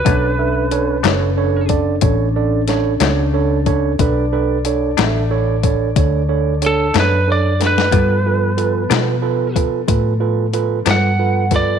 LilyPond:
<<
  \new Staff \with { instrumentName = "Lead electric guitar" } { \time 12/8 \key b \minor \tempo 4. = 61 b'2~ b'8 r2. r8 | r1 a'8 b'8 d''8 b'8~ | b'2~ b'8 r2 fis''4 d''8 | }
  \new Staff \with { instrumentName = "Tine electric piano" } { \time 12/8 \key b \minor <d' a' cis''>8 <d' a' e''>8 <d' a' cis''>8 <d' a' cis''>8 <d' a' cis''>8 <d' a' d''>8 <d' a' cis''>8 <d' a' d''>8 <d' a' cis''>8 <d' a' cis''>8 <d' a' cis''>8 <d' a' cis''>8 | <d' a' b'>8 <d' a' b'>8 <d' a' cis''>8 <d' a' e''>8 <d' a' cis''>8 <d' a' cis''>8 <d' a' cis''>8 <d' a' cis''>8 <d' a' cis''>8 <d' a' cis''>8 <d' a' cis''>8 <d' a' b'>8 | <f' a' b'>8 <f' a' b'>8 <f' a' b'>8 <f' a' b'>8 <f' a' b'>8 <f' a' b'>8 <f' a' b'>8 <f' a' b'>8 <f' a' b'>8 <f' a' b'>8 <f' a' b'>8 <f' a' b'>8 | }
  \new Staff \with { instrumentName = "Tonewheel organ" } { \time 12/8 \key b \minor <cis' d' a'>1. | <d' a' d''>1. | <f b a'>1. | }
  \new Staff \with { instrumentName = "Clean electric guitar" } { \clef bass \time 12/8 \key b \minor <b, fis a d'>8 r4 <b, fis a d'>8 r2 r8 <b, fis a d'>8 r4 | r4. <b, fis a d'>8 r2 r8 <b, fis a d'>8 r4 | <g, f b d'>8 r4 <g, f b d'>8 r2 r8 <g, f b d'>8 r4 | }
  \new Staff \with { instrumentName = "Fingered electric bass" } { \clef bass \time 12/8 \key b \minor b,,4. fis,,4. a,,4. cis,4. | b,,4. a,,4. d,4. fis,4. | g,4. b,4. a,4. g,4. | }
  \new DrumStaff \with { instrumentName = "Drums" } \drummode { \time 12/8 <hh bd>4 hh8 <hh sn>4 <hh bd>8 <hh bd>4 <hh sn>8 <hh sn>4 <hh bd>8 | <hh bd>4 hh8 <hh sn>4 <hh bd>8 <hh bd>4 hh8 <hh sn>4 <hh sn>16 sn16 | <hh bd>4 hh8 <hh sn>4 <hh bd>8 <hh bd>4 hh8 <hh sn>4 <hh bd sn>8 | }
>>